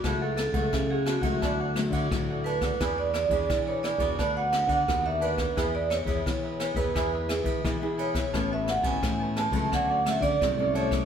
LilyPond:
<<
  \new Staff \with { instrumentName = "Vibraphone" } { \time 4/4 \key a \major \tempo 4 = 87 fis'16 a'16 a'8. gis'16 fis'2 b'8~ | b'16 d''16 d''8. cis''16 d''8. fis''16 fis''8. e''16 b'8~ | b'16 d''16 cis''4 cis''16 b'4~ b'16 r8 cis''8~ | cis''16 e''16 fis''16 gis''8. a''8 fis''8 e''16 d''8. cis''8 | }
  \new Staff \with { instrumentName = "Cavaquinho" } { \time 4/4 \key a \major <e' a' cis'' fis''>16 <a' cis'' fis''>8 <a' cis'' fis''>16 r16 <a' cis'' fis''>16 <e' a' cis'' fis''>16 <a' cis'' fis''>16 <e' a' d'' fis''>16 <a' d'' fis''>16 r16 <a' d'' fis''>8 <a' d'' fis''>16 <e' a' d'' fis''>16 <a' d'' fis''>16 | <e' gis' b' d''>16 <gis' b' d''>8 <gis' b' d''>16 r16 <gis' b' d''>16 <e' gis' b' d''>16 <gis' b' d''>16 <d' b' d'' fis''>16 <b' d'' fis''>16 r16 <b' d'' fis''>8 <b' d'' fis''>16 <d' b' d'' fis''>16 <b' d'' fis''>16 | <e' gis' b' e''>16 <gis' b' e''>8 <gis' b' e''>16 r16 <gis' b' e''>16 <e' gis' b' e''>16 <gis' b' e''>16 <e' gis' b' e''>16 <gis' b' e''>16 r16 <gis' b' e''>8 <gis' b' e''>16 <e' gis' b' e''>16 <gis' b' e''>16 | <a' b' cis'' a''>16 <b' cis'' a''>8 <b' cis'' a''>16 r16 <b' cis'' a''>16 <a' b' cis'' a''>16 <b' cis'' a''>16 <fis' a' cis'' d''>16 <a' cis'' d''>16 r16 <a' d''>8 <a' cis'' d''>16 <fis' a' cis'' d''>16 <a' cis'' d''>16 | }
  \new Staff \with { instrumentName = "Nylon-string guitar" } { \time 4/4 \key a \major << { <fis a e'>8 r16 <fis a e'>4 <fis a e'>8. <fis a e'>8 <fis a e'>4 | <b d' gis'>8 r16 <b d' gis'>4 <b d' fis'>8. <b d' fis'>8 <b d' fis'>4 | <b e' gis'>8. <b e' gis'>4 <b e' gis'>8. <b e' gis'>8 <b e' gis'>16 <b e' gis'>8. | <e b cis'>8 r16 <e b cis'>4 <fis a cis'>8. <fis a cis'>8 <fis a cis'>16 <fis a cis'>8. | } \\ { cis4 cis4 d4 a,4 | e4 b,4 d4 d4 | e4 b,4 e4 b,4 | a,4 e4 d4 a,4 | } >> }
  \new Staff \with { instrumentName = "Fingered electric bass" } { \clef bass \time 4/4 \key a \major cis,8. cis,16 cis8. cis,16 d,8. d16 d,4 | e,8. e,16 e8. e,16 d,8. d16 dis,4 | e,8. e,16 e8. e,16 e,8. e16 e4 | a,,8. a,,16 a,8. cis,16 d,8. d16 c,4 | }
  \new DrumStaff \with { instrumentName = "Drums" } \drummode { \time 4/4 <bd cymr ss>8 <cymr ss>16 <bd cymr>16 <bd cymr ss>8 <cymr ss>16 <bd cymr>16 <bd cymr ss>8 <cymr ss>16 <bd cymr>16 <bd cymr ss>8 cymr16 <bd cymr ss>16 | <bd cymr ss>8 <cymr ss>16 <bd cymr>16 <bd cymr ss>8 <cymr ss>16 <bd cymr>16 <bd cymr ss>8 <cymr ss>16 <bd cymr>16 <bd cymr ss>8 cymr16 <bd cymr ss>16 | <bd cymr ss>8 <cymr ss>16 <bd cymr>16 <bd cymr ss>8 <cymr ss>16 <bd cymr>16 <bd cymr ss>8 <cymr ss>16 <bd cymr>16 <bd cymr ss>8 cymr16 <bd cymr ss>16 | <bd cymr ss>8 <cymr ss>16 <bd cymr>16 <bd cymr ss>8 <cymr ss>16 <bd cymr>16 <bd cymr ss>8 <cymr ss>16 <bd cymr>16 <bd cymr ss>8 cymr16 <bd cymr ss>16 | }
>>